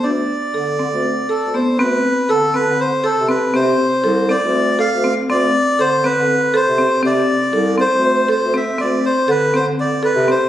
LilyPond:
<<
  \new Staff \with { instrumentName = "Melodica" } { \time 7/8 \key c \major \tempo 4 = 120 d''2~ d''8 a'8 c''8 | b'4 a'8 b'8 c''8 a'8 b'8 | c''4. d''4 f''8. r16 | d''4 c''8 b'4 c''4 |
d''4. c''4 c''8 e''8 | d''8 c''8 b'8 c''8 d''8 b'8 c''8 | }
  \new Staff \with { instrumentName = "Marimba" } { \time 7/8 \key c \major d'4 a'8 c'4 a'8 b8 | c'4 a'8 c'4 a'8 c'8 | c'4 a'8 c'4 a'8 c'8 | c'4 a'8 c'4 a'8 c'8 |
c'4 a'8 c'4 a'8 c'8 | c'4 a'8 c'4 a'8 c'8 | }
  \new Staff \with { instrumentName = "Bass clarinet" } { \clef bass \time 7/8 \key c \major d,8 r8 d8. d,8 r8 d,8 r16 | d,8 r8 d8. d8 r8 c8 r16 | c8 r8 c,8. d,4 d,8 r16 | d,8 r8 d8. d8 r8 c8 r16 |
c8 r8 c,8. d,4 d,8 r16 | d,8 r8 d8. d8 r8 c8 r16 | }
>>